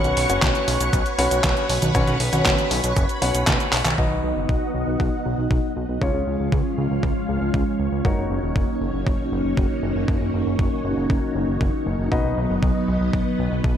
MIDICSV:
0, 0, Header, 1, 5, 480
1, 0, Start_track
1, 0, Tempo, 508475
1, 1839, Time_signature, 4, 2, 24, 8
1, 13001, End_track
2, 0, Start_track
2, 0, Title_t, "Grand piano"
2, 0, Program_c, 0, 0
2, 0, Note_on_c, 0, 61, 84
2, 0, Note_on_c, 0, 66, 75
2, 0, Note_on_c, 0, 71, 73
2, 0, Note_on_c, 0, 73, 90
2, 250, Note_off_c, 0, 61, 0
2, 250, Note_off_c, 0, 66, 0
2, 250, Note_off_c, 0, 71, 0
2, 250, Note_off_c, 0, 73, 0
2, 278, Note_on_c, 0, 61, 80
2, 278, Note_on_c, 0, 66, 76
2, 278, Note_on_c, 0, 73, 91
2, 279, Note_on_c, 0, 71, 74
2, 1090, Note_off_c, 0, 61, 0
2, 1090, Note_off_c, 0, 66, 0
2, 1090, Note_off_c, 0, 71, 0
2, 1090, Note_off_c, 0, 73, 0
2, 1118, Note_on_c, 0, 66, 87
2, 1118, Note_on_c, 0, 71, 87
2, 1119, Note_on_c, 0, 61, 94
2, 1119, Note_on_c, 0, 73, 108
2, 1810, Note_off_c, 0, 61, 0
2, 1810, Note_off_c, 0, 66, 0
2, 1810, Note_off_c, 0, 71, 0
2, 1810, Note_off_c, 0, 73, 0
2, 1837, Note_on_c, 0, 73, 106
2, 1838, Note_on_c, 0, 61, 94
2, 1838, Note_on_c, 0, 66, 87
2, 1839, Note_on_c, 0, 71, 87
2, 2017, Note_off_c, 0, 61, 0
2, 2017, Note_off_c, 0, 73, 0
2, 2018, Note_off_c, 0, 66, 0
2, 2018, Note_off_c, 0, 71, 0
2, 2196, Note_on_c, 0, 66, 72
2, 2196, Note_on_c, 0, 71, 71
2, 2196, Note_on_c, 0, 73, 85
2, 2197, Note_on_c, 0, 61, 78
2, 3013, Note_off_c, 0, 71, 0
2, 3014, Note_off_c, 0, 61, 0
2, 3014, Note_off_c, 0, 66, 0
2, 3014, Note_off_c, 0, 73, 0
2, 3037, Note_on_c, 0, 66, 70
2, 3037, Note_on_c, 0, 71, 69
2, 3037, Note_on_c, 0, 73, 83
2, 3038, Note_on_c, 0, 61, 73
2, 3729, Note_off_c, 0, 61, 0
2, 3729, Note_off_c, 0, 66, 0
2, 3729, Note_off_c, 0, 71, 0
2, 3729, Note_off_c, 0, 73, 0
2, 3758, Note_on_c, 0, 66, 62
2, 3758, Note_on_c, 0, 71, 63
2, 3758, Note_on_c, 0, 75, 76
2, 3759, Note_on_c, 0, 63, 67
2, 5650, Note_off_c, 0, 63, 0
2, 5650, Note_off_c, 0, 66, 0
2, 5650, Note_off_c, 0, 71, 0
2, 5650, Note_off_c, 0, 75, 0
2, 5679, Note_on_c, 0, 61, 70
2, 5679, Note_on_c, 0, 65, 64
2, 5679, Note_on_c, 0, 73, 77
2, 5680, Note_on_c, 0, 68, 62
2, 7570, Note_off_c, 0, 61, 0
2, 7570, Note_off_c, 0, 65, 0
2, 7570, Note_off_c, 0, 68, 0
2, 7570, Note_off_c, 0, 73, 0
2, 7598, Note_on_c, 0, 63, 69
2, 7598, Note_on_c, 0, 66, 63
2, 7598, Note_on_c, 0, 70, 65
2, 7598, Note_on_c, 0, 73, 76
2, 11409, Note_off_c, 0, 63, 0
2, 11410, Note_off_c, 0, 66, 0
2, 11410, Note_off_c, 0, 70, 0
2, 11410, Note_off_c, 0, 73, 0
2, 11438, Note_on_c, 0, 63, 70
2, 11438, Note_on_c, 0, 66, 64
2, 11438, Note_on_c, 0, 71, 66
2, 11438, Note_on_c, 0, 75, 77
2, 13001, Note_off_c, 0, 63, 0
2, 13001, Note_off_c, 0, 66, 0
2, 13001, Note_off_c, 0, 71, 0
2, 13001, Note_off_c, 0, 75, 0
2, 13001, End_track
3, 0, Start_track
3, 0, Title_t, "String machine"
3, 0, Program_c, 1, 50
3, 0, Note_on_c, 1, 71, 84
3, 0, Note_on_c, 1, 73, 77
3, 0, Note_on_c, 1, 78, 76
3, 0, Note_on_c, 1, 85, 96
3, 1803, Note_off_c, 1, 85, 0
3, 1840, Note_on_c, 1, 83, 95
3, 3720, Note_off_c, 1, 73, 0
3, 3721, Note_off_c, 1, 71, 0
3, 3723, Note_off_c, 1, 78, 0
3, 3740, Note_off_c, 1, 83, 0
3, 3760, Note_on_c, 1, 59, 80
3, 3760, Note_on_c, 1, 63, 73
3, 3760, Note_on_c, 1, 78, 89
3, 3761, Note_on_c, 1, 66, 74
3, 3762, Note_on_c, 1, 75, 75
3, 5660, Note_off_c, 1, 59, 0
3, 5660, Note_off_c, 1, 63, 0
3, 5660, Note_off_c, 1, 78, 0
3, 5661, Note_off_c, 1, 66, 0
3, 5661, Note_off_c, 1, 75, 0
3, 5675, Note_on_c, 1, 65, 73
3, 5676, Note_on_c, 1, 56, 78
3, 5678, Note_on_c, 1, 61, 70
3, 5678, Note_on_c, 1, 73, 73
3, 5678, Note_on_c, 1, 77, 86
3, 7578, Note_off_c, 1, 56, 0
3, 7578, Note_off_c, 1, 65, 0
3, 7579, Note_off_c, 1, 61, 0
3, 7579, Note_off_c, 1, 77, 0
3, 7597, Note_on_c, 1, 63, 72
3, 7598, Note_on_c, 1, 58, 77
3, 7598, Note_on_c, 1, 61, 74
3, 7598, Note_on_c, 1, 66, 74
3, 11401, Note_off_c, 1, 58, 0
3, 11401, Note_off_c, 1, 61, 0
3, 11401, Note_off_c, 1, 66, 0
3, 11401, Note_off_c, 1, 73, 0
3, 11437, Note_on_c, 1, 54, 79
3, 11438, Note_on_c, 1, 59, 73
3, 11438, Note_on_c, 1, 71, 74
3, 11438, Note_on_c, 1, 75, 89
3, 13001, Note_off_c, 1, 54, 0
3, 13001, Note_off_c, 1, 59, 0
3, 13001, Note_off_c, 1, 63, 0
3, 13001, Note_off_c, 1, 71, 0
3, 13001, Note_off_c, 1, 75, 0
3, 13001, End_track
4, 0, Start_track
4, 0, Title_t, "Analog synth bass"
4, 0, Program_c, 2, 38
4, 40, Note_on_c, 2, 35, 77
4, 129, Note_off_c, 2, 35, 0
4, 159, Note_on_c, 2, 35, 99
4, 249, Note_off_c, 2, 35, 0
4, 279, Note_on_c, 2, 30, 88
4, 369, Note_off_c, 2, 30, 0
4, 400, Note_on_c, 2, 35, 104
4, 489, Note_off_c, 2, 35, 0
4, 640, Note_on_c, 2, 35, 95
4, 730, Note_off_c, 2, 35, 0
4, 759, Note_on_c, 2, 35, 82
4, 849, Note_off_c, 2, 35, 0
4, 880, Note_on_c, 2, 35, 104
4, 970, Note_off_c, 2, 35, 0
4, 1118, Note_on_c, 2, 35, 97
4, 1209, Note_off_c, 2, 35, 0
4, 1239, Note_on_c, 2, 35, 80
4, 1329, Note_off_c, 2, 35, 0
4, 1359, Note_on_c, 2, 35, 107
4, 1449, Note_off_c, 2, 35, 0
4, 1599, Note_on_c, 2, 35, 98
4, 1689, Note_off_c, 2, 35, 0
4, 1719, Note_on_c, 2, 35, 83
4, 1809, Note_off_c, 2, 35, 0
4, 1840, Note_on_c, 2, 35, 106
4, 1930, Note_off_c, 2, 35, 0
4, 1959, Note_on_c, 2, 35, 81
4, 2049, Note_off_c, 2, 35, 0
4, 2079, Note_on_c, 2, 35, 97
4, 2169, Note_off_c, 2, 35, 0
4, 2200, Note_on_c, 2, 35, 83
4, 2289, Note_off_c, 2, 35, 0
4, 2320, Note_on_c, 2, 35, 102
4, 2409, Note_off_c, 2, 35, 0
4, 2559, Note_on_c, 2, 35, 97
4, 2649, Note_off_c, 2, 35, 0
4, 2679, Note_on_c, 2, 35, 84
4, 2769, Note_off_c, 2, 35, 0
4, 2800, Note_on_c, 2, 30, 104
4, 2889, Note_off_c, 2, 30, 0
4, 3041, Note_on_c, 2, 35, 94
4, 3130, Note_off_c, 2, 35, 0
4, 3159, Note_on_c, 2, 35, 77
4, 3249, Note_off_c, 2, 35, 0
4, 3279, Note_on_c, 2, 35, 106
4, 3369, Note_off_c, 2, 35, 0
4, 3518, Note_on_c, 2, 35, 97
4, 3609, Note_off_c, 2, 35, 0
4, 3639, Note_on_c, 2, 35, 84
4, 3729, Note_off_c, 2, 35, 0
4, 3760, Note_on_c, 2, 35, 96
4, 3849, Note_off_c, 2, 35, 0
4, 3878, Note_on_c, 2, 35, 75
4, 3968, Note_off_c, 2, 35, 0
4, 3999, Note_on_c, 2, 35, 92
4, 4089, Note_off_c, 2, 35, 0
4, 4119, Note_on_c, 2, 30, 78
4, 4209, Note_off_c, 2, 30, 0
4, 4240, Note_on_c, 2, 35, 92
4, 4329, Note_off_c, 2, 35, 0
4, 4479, Note_on_c, 2, 35, 91
4, 4569, Note_off_c, 2, 35, 0
4, 4601, Note_on_c, 2, 35, 74
4, 4690, Note_off_c, 2, 35, 0
4, 4719, Note_on_c, 2, 35, 97
4, 4809, Note_off_c, 2, 35, 0
4, 4962, Note_on_c, 2, 35, 85
4, 5050, Note_off_c, 2, 35, 0
4, 5080, Note_on_c, 2, 35, 76
4, 5169, Note_off_c, 2, 35, 0
4, 5199, Note_on_c, 2, 35, 98
4, 5289, Note_off_c, 2, 35, 0
4, 5441, Note_on_c, 2, 35, 91
4, 5530, Note_off_c, 2, 35, 0
4, 5559, Note_on_c, 2, 35, 78
4, 5649, Note_off_c, 2, 35, 0
4, 5679, Note_on_c, 2, 37, 96
4, 5769, Note_off_c, 2, 37, 0
4, 5800, Note_on_c, 2, 37, 75
4, 5889, Note_off_c, 2, 37, 0
4, 5919, Note_on_c, 2, 37, 91
4, 6009, Note_off_c, 2, 37, 0
4, 6039, Note_on_c, 2, 37, 82
4, 6129, Note_off_c, 2, 37, 0
4, 6158, Note_on_c, 2, 37, 95
4, 6249, Note_off_c, 2, 37, 0
4, 6399, Note_on_c, 2, 37, 88
4, 6489, Note_off_c, 2, 37, 0
4, 6521, Note_on_c, 2, 37, 74
4, 6610, Note_off_c, 2, 37, 0
4, 6639, Note_on_c, 2, 37, 97
4, 6729, Note_off_c, 2, 37, 0
4, 6880, Note_on_c, 2, 37, 88
4, 6970, Note_off_c, 2, 37, 0
4, 6999, Note_on_c, 2, 37, 73
4, 7089, Note_off_c, 2, 37, 0
4, 7119, Note_on_c, 2, 37, 100
4, 7209, Note_off_c, 2, 37, 0
4, 7357, Note_on_c, 2, 37, 92
4, 7448, Note_off_c, 2, 37, 0
4, 7479, Note_on_c, 2, 37, 80
4, 7569, Note_off_c, 2, 37, 0
4, 7599, Note_on_c, 2, 30, 99
4, 7689, Note_off_c, 2, 30, 0
4, 7717, Note_on_c, 2, 30, 75
4, 7808, Note_off_c, 2, 30, 0
4, 7836, Note_on_c, 2, 30, 88
4, 7927, Note_off_c, 2, 30, 0
4, 7959, Note_on_c, 2, 27, 81
4, 8049, Note_off_c, 2, 27, 0
4, 8079, Note_on_c, 2, 30, 96
4, 8169, Note_off_c, 2, 30, 0
4, 8318, Note_on_c, 2, 30, 90
4, 8408, Note_off_c, 2, 30, 0
4, 8438, Note_on_c, 2, 30, 79
4, 8528, Note_off_c, 2, 30, 0
4, 8559, Note_on_c, 2, 30, 97
4, 8649, Note_off_c, 2, 30, 0
4, 8799, Note_on_c, 2, 30, 89
4, 8889, Note_off_c, 2, 30, 0
4, 8918, Note_on_c, 2, 30, 77
4, 9008, Note_off_c, 2, 30, 0
4, 9038, Note_on_c, 2, 30, 99
4, 9129, Note_off_c, 2, 30, 0
4, 9277, Note_on_c, 2, 30, 89
4, 9368, Note_off_c, 2, 30, 0
4, 9399, Note_on_c, 2, 30, 80
4, 9489, Note_off_c, 2, 30, 0
4, 9519, Note_on_c, 2, 30, 100
4, 9609, Note_off_c, 2, 30, 0
4, 9639, Note_on_c, 2, 30, 73
4, 9729, Note_off_c, 2, 30, 0
4, 9760, Note_on_c, 2, 30, 88
4, 9849, Note_off_c, 2, 30, 0
4, 9879, Note_on_c, 2, 30, 81
4, 9969, Note_off_c, 2, 30, 0
4, 9998, Note_on_c, 2, 30, 99
4, 10088, Note_off_c, 2, 30, 0
4, 10239, Note_on_c, 2, 30, 91
4, 10329, Note_off_c, 2, 30, 0
4, 10359, Note_on_c, 2, 30, 77
4, 10449, Note_off_c, 2, 30, 0
4, 10479, Note_on_c, 2, 30, 98
4, 10569, Note_off_c, 2, 30, 0
4, 10718, Note_on_c, 2, 30, 92
4, 10808, Note_off_c, 2, 30, 0
4, 10839, Note_on_c, 2, 30, 73
4, 10929, Note_off_c, 2, 30, 0
4, 10958, Note_on_c, 2, 30, 99
4, 11049, Note_off_c, 2, 30, 0
4, 11200, Note_on_c, 2, 30, 91
4, 11289, Note_off_c, 2, 30, 0
4, 11320, Note_on_c, 2, 30, 76
4, 11409, Note_off_c, 2, 30, 0
4, 11439, Note_on_c, 2, 35, 101
4, 11529, Note_off_c, 2, 35, 0
4, 11559, Note_on_c, 2, 35, 74
4, 11649, Note_off_c, 2, 35, 0
4, 11680, Note_on_c, 2, 35, 93
4, 11769, Note_off_c, 2, 35, 0
4, 11800, Note_on_c, 2, 30, 81
4, 11889, Note_off_c, 2, 30, 0
4, 11920, Note_on_c, 2, 35, 97
4, 12009, Note_off_c, 2, 35, 0
4, 12161, Note_on_c, 2, 35, 89
4, 12250, Note_off_c, 2, 35, 0
4, 12280, Note_on_c, 2, 35, 77
4, 12370, Note_off_c, 2, 35, 0
4, 12400, Note_on_c, 2, 35, 96
4, 12489, Note_off_c, 2, 35, 0
4, 12641, Note_on_c, 2, 35, 88
4, 12730, Note_off_c, 2, 35, 0
4, 12760, Note_on_c, 2, 35, 78
4, 12849, Note_off_c, 2, 35, 0
4, 12880, Note_on_c, 2, 35, 100
4, 12969, Note_off_c, 2, 35, 0
4, 13001, End_track
5, 0, Start_track
5, 0, Title_t, "Drums"
5, 41, Note_on_c, 9, 42, 27
5, 41, Note_on_c, 9, 69, 30
5, 135, Note_off_c, 9, 42, 0
5, 135, Note_off_c, 9, 69, 0
5, 160, Note_on_c, 9, 46, 115
5, 254, Note_off_c, 9, 46, 0
5, 280, Note_on_c, 9, 42, 56
5, 280, Note_on_c, 9, 69, 60
5, 374, Note_off_c, 9, 42, 0
5, 374, Note_off_c, 9, 69, 0
5, 400, Note_on_c, 9, 36, 116
5, 400, Note_on_c, 9, 38, 116
5, 400, Note_on_c, 9, 39, 102
5, 400, Note_on_c, 9, 42, 55
5, 400, Note_on_c, 9, 69, 52
5, 494, Note_off_c, 9, 36, 0
5, 495, Note_off_c, 9, 38, 0
5, 495, Note_off_c, 9, 39, 0
5, 495, Note_off_c, 9, 42, 0
5, 495, Note_off_c, 9, 69, 0
5, 520, Note_on_c, 9, 42, 27
5, 520, Note_on_c, 9, 69, 31
5, 614, Note_off_c, 9, 42, 0
5, 614, Note_off_c, 9, 69, 0
5, 641, Note_on_c, 9, 46, 116
5, 735, Note_off_c, 9, 46, 0
5, 761, Note_on_c, 9, 42, 54
5, 761, Note_on_c, 9, 69, 64
5, 855, Note_off_c, 9, 42, 0
5, 855, Note_off_c, 9, 69, 0
5, 880, Note_on_c, 9, 36, 115
5, 881, Note_on_c, 9, 42, 57
5, 881, Note_on_c, 9, 69, 51
5, 974, Note_off_c, 9, 36, 0
5, 975, Note_off_c, 9, 42, 0
5, 975, Note_off_c, 9, 69, 0
5, 1000, Note_on_c, 9, 42, 28
5, 1000, Note_on_c, 9, 69, 31
5, 1094, Note_off_c, 9, 42, 0
5, 1094, Note_off_c, 9, 69, 0
5, 1119, Note_on_c, 9, 46, 114
5, 1214, Note_off_c, 9, 46, 0
5, 1240, Note_on_c, 9, 42, 55
5, 1240, Note_on_c, 9, 69, 61
5, 1334, Note_off_c, 9, 42, 0
5, 1334, Note_off_c, 9, 69, 0
5, 1359, Note_on_c, 9, 36, 122
5, 1360, Note_on_c, 9, 38, 114
5, 1360, Note_on_c, 9, 39, 104
5, 1360, Note_on_c, 9, 42, 54
5, 1360, Note_on_c, 9, 69, 52
5, 1454, Note_off_c, 9, 36, 0
5, 1455, Note_off_c, 9, 38, 0
5, 1455, Note_off_c, 9, 39, 0
5, 1455, Note_off_c, 9, 42, 0
5, 1455, Note_off_c, 9, 69, 0
5, 1481, Note_on_c, 9, 42, 27
5, 1481, Note_on_c, 9, 69, 30
5, 1575, Note_off_c, 9, 42, 0
5, 1575, Note_off_c, 9, 69, 0
5, 1600, Note_on_c, 9, 46, 111
5, 1694, Note_off_c, 9, 46, 0
5, 1720, Note_on_c, 9, 42, 55
5, 1720, Note_on_c, 9, 63, 78
5, 1720, Note_on_c, 9, 69, 64
5, 1814, Note_off_c, 9, 42, 0
5, 1814, Note_off_c, 9, 63, 0
5, 1814, Note_off_c, 9, 69, 0
5, 1839, Note_on_c, 9, 42, 57
5, 1839, Note_on_c, 9, 69, 51
5, 1840, Note_on_c, 9, 36, 118
5, 1934, Note_off_c, 9, 36, 0
5, 1934, Note_off_c, 9, 42, 0
5, 1934, Note_off_c, 9, 69, 0
5, 1959, Note_on_c, 9, 38, 35
5, 1959, Note_on_c, 9, 42, 27
5, 1959, Note_on_c, 9, 69, 28
5, 2053, Note_off_c, 9, 38, 0
5, 2053, Note_off_c, 9, 42, 0
5, 2053, Note_off_c, 9, 69, 0
5, 2077, Note_on_c, 9, 46, 113
5, 2172, Note_off_c, 9, 46, 0
5, 2198, Note_on_c, 9, 42, 56
5, 2198, Note_on_c, 9, 63, 77
5, 2198, Note_on_c, 9, 69, 62
5, 2292, Note_off_c, 9, 42, 0
5, 2292, Note_off_c, 9, 63, 0
5, 2292, Note_off_c, 9, 69, 0
5, 2319, Note_on_c, 9, 38, 116
5, 2319, Note_on_c, 9, 39, 105
5, 2319, Note_on_c, 9, 42, 57
5, 2319, Note_on_c, 9, 69, 50
5, 2320, Note_on_c, 9, 36, 118
5, 2413, Note_off_c, 9, 38, 0
5, 2413, Note_off_c, 9, 39, 0
5, 2413, Note_off_c, 9, 42, 0
5, 2413, Note_off_c, 9, 69, 0
5, 2414, Note_off_c, 9, 36, 0
5, 2440, Note_on_c, 9, 42, 28
5, 2440, Note_on_c, 9, 69, 29
5, 2534, Note_off_c, 9, 42, 0
5, 2534, Note_off_c, 9, 69, 0
5, 2558, Note_on_c, 9, 46, 117
5, 2653, Note_off_c, 9, 46, 0
5, 2679, Note_on_c, 9, 42, 58
5, 2679, Note_on_c, 9, 69, 60
5, 2773, Note_off_c, 9, 42, 0
5, 2773, Note_off_c, 9, 69, 0
5, 2799, Note_on_c, 9, 42, 58
5, 2799, Note_on_c, 9, 69, 52
5, 2800, Note_on_c, 9, 36, 113
5, 2894, Note_off_c, 9, 36, 0
5, 2894, Note_off_c, 9, 42, 0
5, 2894, Note_off_c, 9, 69, 0
5, 2919, Note_on_c, 9, 42, 29
5, 2919, Note_on_c, 9, 69, 30
5, 3014, Note_off_c, 9, 42, 0
5, 3014, Note_off_c, 9, 69, 0
5, 3039, Note_on_c, 9, 46, 115
5, 3134, Note_off_c, 9, 46, 0
5, 3159, Note_on_c, 9, 42, 56
5, 3159, Note_on_c, 9, 69, 60
5, 3253, Note_off_c, 9, 42, 0
5, 3253, Note_off_c, 9, 69, 0
5, 3279, Note_on_c, 9, 38, 119
5, 3279, Note_on_c, 9, 39, 104
5, 3279, Note_on_c, 9, 42, 58
5, 3279, Note_on_c, 9, 69, 52
5, 3280, Note_on_c, 9, 36, 117
5, 3373, Note_off_c, 9, 38, 0
5, 3373, Note_off_c, 9, 39, 0
5, 3373, Note_off_c, 9, 42, 0
5, 3373, Note_off_c, 9, 69, 0
5, 3374, Note_off_c, 9, 36, 0
5, 3400, Note_on_c, 9, 42, 29
5, 3400, Note_on_c, 9, 69, 29
5, 3494, Note_off_c, 9, 42, 0
5, 3494, Note_off_c, 9, 69, 0
5, 3518, Note_on_c, 9, 39, 88
5, 3518, Note_on_c, 9, 46, 115
5, 3613, Note_off_c, 9, 39, 0
5, 3613, Note_off_c, 9, 46, 0
5, 3639, Note_on_c, 9, 39, 101
5, 3639, Note_on_c, 9, 42, 57
5, 3639, Note_on_c, 9, 63, 74
5, 3639, Note_on_c, 9, 69, 59
5, 3733, Note_off_c, 9, 39, 0
5, 3733, Note_off_c, 9, 42, 0
5, 3733, Note_off_c, 9, 63, 0
5, 3733, Note_off_c, 9, 69, 0
5, 3760, Note_on_c, 9, 36, 110
5, 3854, Note_off_c, 9, 36, 0
5, 4240, Note_on_c, 9, 36, 106
5, 4334, Note_off_c, 9, 36, 0
5, 4719, Note_on_c, 9, 36, 108
5, 4814, Note_off_c, 9, 36, 0
5, 5199, Note_on_c, 9, 36, 107
5, 5293, Note_off_c, 9, 36, 0
5, 5679, Note_on_c, 9, 36, 113
5, 5773, Note_off_c, 9, 36, 0
5, 6158, Note_on_c, 9, 36, 113
5, 6253, Note_off_c, 9, 36, 0
5, 6638, Note_on_c, 9, 36, 107
5, 6733, Note_off_c, 9, 36, 0
5, 7118, Note_on_c, 9, 36, 113
5, 7212, Note_off_c, 9, 36, 0
5, 7598, Note_on_c, 9, 36, 114
5, 7692, Note_off_c, 9, 36, 0
5, 8078, Note_on_c, 9, 36, 118
5, 8172, Note_off_c, 9, 36, 0
5, 8558, Note_on_c, 9, 36, 112
5, 8653, Note_off_c, 9, 36, 0
5, 9038, Note_on_c, 9, 36, 117
5, 9132, Note_off_c, 9, 36, 0
5, 9518, Note_on_c, 9, 36, 108
5, 9612, Note_off_c, 9, 36, 0
5, 9998, Note_on_c, 9, 36, 116
5, 10092, Note_off_c, 9, 36, 0
5, 10478, Note_on_c, 9, 36, 110
5, 10572, Note_off_c, 9, 36, 0
5, 10958, Note_on_c, 9, 36, 114
5, 11053, Note_off_c, 9, 36, 0
5, 11439, Note_on_c, 9, 36, 108
5, 11533, Note_off_c, 9, 36, 0
5, 11919, Note_on_c, 9, 36, 115
5, 12013, Note_off_c, 9, 36, 0
5, 12399, Note_on_c, 9, 36, 107
5, 12494, Note_off_c, 9, 36, 0
5, 12879, Note_on_c, 9, 36, 115
5, 12973, Note_off_c, 9, 36, 0
5, 13001, End_track
0, 0, End_of_file